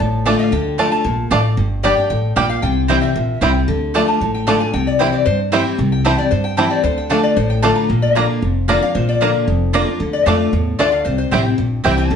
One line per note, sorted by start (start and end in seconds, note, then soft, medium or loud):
0.00 0.34 A1 medium
0.00 0.50 A2 medium
0.00 0.25 A5 medium
0.25 0.51 D3 medium
0.25 0.35 A3 medium
0.25 0.51 A3 medium
0.25 0.32 A3 medium
0.25 0.51 D4 loud
0.25 0.29 D4 medium
0.25 0.35 F4 medium
0.25 0.51 F4 medium
0.25 0.35 D5 loud
0.25 0.39 G5 medium
0.25 0.35 A5 loud
0.39 0.52 F5 medium
0.52 0.87 D2 medium
0.52 0.77 D3 medium
0.52 0.91 G5 medium
0.78 1.03 D3 medium
0.78 0.87 A3 medium
0.78 1.04 A3 medium
0.78 0.85 A3 medium
0.78 1.04 D4 medium
0.78 0.82 D4 medium
0.78 0.88 F4 medium
0.78 1.04 F4 medium
0.78 0.88 D5 medium
0.78 0.88 A5 loud
0.92 1.43 A5 loud
1.04 1.27 A#1 medium
1.04 1.30 A#2 medium
1.31 1.53 A1 medium
1.31 1.56 A2 medium
1.31 1.40 A3 medium
1.31 1.37 A3 medium
1.31 1.34 D4 medium
1.31 1.40 F4 loud
1.31 1.40 D5 loud
1.31 1.40 A5 loud
1.57 1.92 G1 medium
1.57 2.07 G2 medium
1.83 1.96 G3 medium
1.83 1.90 G3 medium
1.83 1.93 A#3 medium
1.83 1.97 A#3 medium
1.83 1.97 D4 medium
1.83 1.87 D4 medium
1.83 1.93 G4 loud
1.83 1.96 G4 loud
1.83 1.97 D5 loud
1.83 1.93 D5 loud
1.83 1.93 G5 loud
1.97 2.10 D4 soft
1.97 2.09 G4 medium
1.97 2.09 G5 medium
2.10 2.32 A1 medium
2.10 2.35 A2 medium
2.10 2.35 G5 loud
2.36 2.59 A#1 medium
2.36 2.61 A#2 medium
2.36 2.42 G3 medium
2.36 2.45 A#3 medium
2.36 2.39 D4 medium
2.36 2.45 G4 medium
2.36 2.46 D5 loud
2.36 2.49 G5 loud
2.36 2.46 G5 loud
2.49 2.62 F5 loud
2.62 2.97 C2 medium
2.62 3.13 C3 loud
2.62 3.01 G5 loud
2.88 3.14 E3 medium
2.88 3.14 G3 medium
2.88 2.95 G3 medium
2.88 2.98 C4 loud
2.88 3.14 C4 medium
2.88 2.95 C4 medium
2.88 2.98 E4 medium
2.88 3.15 E4 loud
2.88 2.96 E4 medium
2.88 2.98 C5 medium
2.88 2.98 G5 medium
3.02 3.53 E5 loud
3.15 3.38 A#1 medium
3.15 3.40 A#2 medium
3.41 3.64 C2 medium
3.41 3.67 C3 medium
3.41 3.48 G3 medium
3.41 3.51 C4 medium
3.41 3.48 C4 medium
3.41 3.51 E4 loud
3.41 3.48 E4 medium
3.41 3.51 C5 medium
3.41 3.51 G5 loud
3.68 4.03 D2 medium
3.68 3.93 D3 medium
3.94 4.19 D3 medium
3.94 4.03 A3 medium
3.94 4.20 A3 medium
3.94 4.01 A3 medium
3.94 4.20 D4 medium
3.94 3.98 D4 medium
3.94 4.03 F4 medium
3.94 4.20 F4 medium
3.94 4.04 D5 loud
3.94 4.04 A5 loud
4.08 4.33 A5 medium
4.21 4.55 A1 medium
4.21 4.71 A2 medium
4.35 4.47 G5 medium
4.47 4.60 D3 loud
4.47 4.56 A3 medium
4.47 4.60 A3 medium
4.47 4.53 A3 medium
4.47 4.60 D4 medium
4.47 4.50 D4 medium
4.47 4.56 F4 loud
4.47 4.59 F4 loud
4.47 4.56 D5 loud
4.47 4.60 A5 loud
4.47 4.56 A5 loud
4.60 4.74 D4 soft
4.60 4.73 F4 medium
4.60 4.73 G#5 loud
4.73 5.08 C2 medium
4.73 5.24 C3 medium
4.73 4.86 G5 loud
4.87 4.99 D5 medium
4.99 5.25 E3 medium
4.99 5.25 G3 medium
4.99 5.06 G3 medium
4.99 5.09 C4 medium
4.99 5.25 C4 medium
4.99 5.06 C4 medium
4.99 5.09 E4 medium
4.99 5.26 E4 medium
4.99 5.06 E4 medium
4.99 5.13 C5 medium
4.99 5.09 C5 medium
4.99 5.09 G5 medium
5.13 5.25 D5 medium
5.25 5.61 G2 medium
5.25 5.76 G2 medium
5.25 5.39 C5 loud
5.52 5.77 E3 loud
5.52 5.78 G3 medium
5.52 5.59 G3 medium
5.52 5.61 C4 medium
5.52 5.78 C4 loud
5.52 5.59 C4 medium
5.52 5.61 E4 loud
5.52 5.78 E4 loud
5.52 5.59 E4 medium
5.52 5.62 C5 loud
5.52 5.62 G5 loud
5.78 6.13 C2 loud
5.78 6.29 C3 medium
5.92 6.05 G5 medium
6.05 6.18 E3 medium
6.05 6.18 G3 medium
6.05 6.11 G3 medium
6.05 6.14 C4 medium
6.05 6.11 C4 medium
6.05 6.18 C4 medium
6.05 6.14 E4 medium
6.05 6.17 E4 loud
6.05 6.12 E4 medium
6.05 6.14 C5 loud
6.05 6.14 G5 loud
6.05 6.18 A5 medium
6.18 6.32 C4 medium
6.18 6.31 E4 medium
6.18 6.30 D5 loud
6.31 6.66 G2 medium
6.31 6.82 G2 medium
6.31 6.44 C5 loud
6.44 6.57 G5 loud
6.57 6.82 E3 loud
6.57 6.83 G3 medium
6.57 6.64 G3 medium
6.57 6.67 C4 medium
6.57 6.83 C4 loud
6.57 6.64 C4 medium
6.57 6.67 E4 loud
6.57 6.83 E4 loud
6.57 6.64 E4 medium
6.57 6.67 C5 loud
6.57 6.67 G5 loud
6.57 6.70 A5 loud
6.70 6.83 D5 loud
6.83 7.18 D2 loud
6.83 7.09 D3 medium
6.83 6.97 C5 loud
6.98 7.10 G5 medium
7.10 7.35 D3 loud
7.10 7.19 A3 medium
7.10 7.17 A3 medium
7.10 7.36 A3 medium
7.10 7.36 D4 medium
7.10 7.14 D4 medium
7.10 7.19 F4 medium
7.10 7.36 F4 loud
7.10 7.19 D5 loud
7.10 7.23 A5 medium
7.10 7.20 A5 loud
7.23 7.36 D5 medium
7.36 7.71 A1 medium
7.36 7.87 A2 medium
7.36 7.50 C5 loud
7.50 7.62 G5 medium
7.62 7.88 D3 loud
7.62 7.72 A3 loud
7.62 7.69 A3 medium
7.62 7.89 A3 loud
7.62 7.89 D4 loud
7.62 7.66 D4 medium
7.62 7.72 F4 loud
7.62 7.89 F4 loud
7.62 7.72 D5 loud
7.62 7.75 A5 loud
7.62 7.72 A5 loud
7.76 7.89 A#5 loud
7.89 8.24 A#1 medium
7.89 8.40 A#2 loud
8.02 8.15 D5 medium
8.15 8.41 D3 medium
8.15 8.25 A#3 medium
8.15 8.41 A#3 medium
8.15 8.22 A#3 medium
8.15 8.41 D4 medium
8.15 8.19 D4 medium
8.15 8.25 F4 medium
8.15 8.42 F4 medium
8.15 8.25 D5 medium
8.15 8.67 F5 medium
8.15 8.25 A#5 loud
8.42 8.77 F1 medium
8.42 8.92 F2 medium
8.68 8.81 D3 medium
8.68 8.77 A#3 loud
8.68 8.81 A#3 loud
8.68 8.75 A#3 medium
8.68 8.82 D4 loud
8.68 8.72 D4 medium
8.68 8.78 F4 medium
8.68 8.80 F4 loud
8.68 8.82 D5 loud
8.68 8.78 D5 medium
8.68 8.78 A#5 loud
8.82 8.95 D4 soft
8.82 8.94 F4 medium
8.82 8.95 F5 loud
8.95 9.30 A#1 loud
8.95 9.45 A#2 medium
8.95 9.08 C5 loud
9.09 9.34 D5 loud
9.21 9.46 D3 medium
9.21 9.30 A#3 medium
9.21 9.46 A#3 medium
9.21 9.28 A#3 medium
9.21 9.47 D4 medium
9.21 9.24 D4 medium
9.21 9.30 F4 medium
9.21 9.47 F4 loud
9.21 9.30 D5 medium
9.21 9.31 A#5 medium
9.47 9.82 F1 medium
9.47 9.98 F2 medium
9.73 9.86 D3 medium
9.73 9.83 A#3 medium
9.73 9.87 A#3 medium
9.73 9.80 A#3 medium
9.73 9.87 D4 loud
9.73 9.77 D4 medium
9.73 9.83 F4 loud
9.73 9.85 F4 loud
9.73 9.83 D5 loud
9.73 9.83 A#5 loud
9.87 10.00 D4 medium
9.87 9.99 F4 medium
10.00 10.17 D2 medium
10.00 10.25 D3 medium
10.13 10.27 D5 loud
10.26 10.49 F2 medium
10.26 10.51 D3 medium
10.26 10.35 A3 medium
10.26 10.52 A3 medium
10.26 10.33 A3 medium
10.26 10.52 D4 medium
10.26 10.30 D4 medium
10.26 10.36 F4 medium
10.26 10.52 F4 medium
10.26 10.36 D5 loud
10.26 10.78 F5 loud
10.26 10.36 A5 loud
10.53 10.75 E2 medium
10.53 10.78 A2 medium
10.79 11.01 D2 medium
10.79 11.04 D3 medium
10.79 10.88 A3 medium
10.79 10.86 A3 medium
10.79 10.83 D4 medium
10.79 10.88 F4 loud
10.79 10.92 D5 loud
10.79 10.88 D5 loud
10.79 10.89 A5 loud
10.92 11.05 F5 loud
11.05 11.23 C2 medium
11.05 11.56 C3 medium
11.05 11.17 C5 loud
11.18 11.44 C5 loud
11.31 11.54 A1 medium
11.31 11.44 E3 medium
11.31 11.45 G3 medium
11.31 11.38 G3 medium
11.31 11.41 C4 medium
11.31 11.45 C4 medium
11.31 11.38 C4 medium
11.31 11.41 E4 medium
11.31 11.44 E4 loud
11.31 11.38 E4 medium
11.31 11.41 C5 loud
11.31 11.41 G5 medium
11.45 11.58 C4 soft
11.45 11.57 E4 medium
11.58 11.80 A#1 medium
11.58 12.08 G2 medium
11.84 12.07 C2 medium
11.84 12.09 E3 medium
11.84 12.09 G3 medium
11.84 11.91 G3 medium
11.84 11.93 C4 medium
11.84 12.10 C4 loud
11.84 11.91 C4 medium
11.84 11.93 E4 loud
11.84 12.10 E4 loud
11.84 11.91 E4 medium
11.84 11.93 C5 loud
11.84 11.94 G5 loud
11.98 12.16 A5 loud
12.10 12.16 D2 medium
12.10 12.16 D3 medium